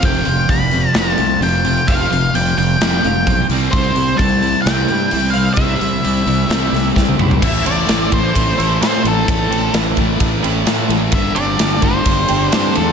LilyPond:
<<
  \new Staff \with { instrumentName = "Lead electric guitar" } { \time 4/4 \key a \minor \tempo 4 = 130 g''4 b''4 a''4 g''4 | f''4 g''8 g''2 r8 | c''4 a''4 g''4. f''8 | e''2. r4 |
e''8 d''4 c''4. c''8 a'8 | a'4 r2. | e''8 d''4 c''4. c''8 a'8 | }
  \new Staff \with { instrumentName = "Clean electric guitar" } { \time 4/4 \key a \minor f8 f'8 g8 f8 g8 f'8 c'8 f'8 | f8 f'8 g8 f8 g8 f'8 c'8 c8 | c8 e'8 g8 e8 g8 e'8 c'8 e'8 | c8 e'8 g8 e8 g8 e'8 c'8 e'8 |
r8 <e a c' e'>8 <e a c' e'>8 r4 <e a c' e'>8 <e a c' e'>8 r8 | r8 <e a c' e'>8 <e a c' e'>8 r4 <e a c' e'>8 <e a c' e'>8 r8 | r8 <g c' d' g'>8 <g c' d' g'>8 r4 <g c' d' g'>8 <g c' d' g'>8 r8 | }
  \new Staff \with { instrumentName = "Distorted electric guitar" } { \clef bass \time 4/4 \key a \minor <f, c f>8 <f, c>8 <f, c>8 <f, c>8 <f, c f>8 <f, c>8 <f, c>8 <f, c>8 | <f, c f>8 <f, c>8 <f, c>8 <f, c>8 <f, c f>8 <f, c>8 <f, c>8 <c g c'>8 | <c g c'>8 <c g>8 <c g>8 <c g>8 <c g c'>8 <c g>8 <c g>8 <c g>8 | <c g c'>8 <c g>8 <c g>8 <c g>8 <c g c'>8 <c g>8 <c g>8 <c g>8 |
<a, e a>4. <a, e a>2~ <a, e a>8 | <a, e a>4. <a, e a>2~ <a, e a>8 | <g, d g>4. <g, d g>2~ <g, d g>8 | }
  \new Staff \with { instrumentName = "Fingered electric bass" } { \clef bass \time 4/4 \key a \minor f,,8 f,,8 f,,4 f,,8 c,8 f,,4 | f,,8 f,,8 f,,8 f,,8 f,,8 f,,8 b,,8 c,8 | c,8 c,8 c,4 c,8 g,8 c,4 | c,8 c,8 c,8 c,8 c,8 c,8 c,8 b,,8 |
a,,8 a,,8 a,,8 a,,8 a,,8 a,,8 a,8 a,,8 | a,,8 a,,8 a,,8 a,,8 a,,8 a,,8 a,8 a,,8 | g,,8 g,,8 g,,8 g,,8 g,,8 g,,8 g,8 e,8 | }
  \new DrumStaff \with { instrumentName = "Drums" } \drummode { \time 4/4 <hho bd>8 hho8 <hho bd>8 hho8 <hho sn>8 hho8 hho8 hho8 | <hho bd>8 hho8 hho8 hho8 <hho sn>8 hho8 <hho bd>8 hho8 | <hho bd>8 hho8 <hho bd>8 hho8 <hho sn>8 hho8 hho8 hho8 | <hho bd>8 hho8 hho8 hho8 <hho sn>8 <hho sn>8 <bd sn>16 tommh16 toml16 tomfh16 |
<cymc bd>8 cymr8 <cymr sn>8 <bd cymr>8 <bd cymr>8 <cymr sn>8 <cymr sn>8 cymr8 | <bd cymr>8 cymr8 <cymr sn>8 <bd cymr>8 <bd cymr>8 cymr8 <cymr sn>8 cymr8 | <bd cymr>8 cymr8 <cymr sn>8 <bd cymr>8 <bd cymr>8 cymr8 <cymr sn>8 cymr8 | }
>>